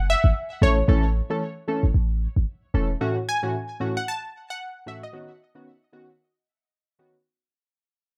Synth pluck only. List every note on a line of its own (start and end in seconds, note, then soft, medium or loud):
0.00 0.10 F#5 loud
0.10 0.64 E5 medium
0.63 2.18 C#5 medium
3.29 3.98 G#5 loud
3.97 4.07 F#5 medium
4.08 4.51 A5 loud
4.50 4.88 F#5 medium
4.88 4.95 E5 medium
5.03 6.69 D#5 medium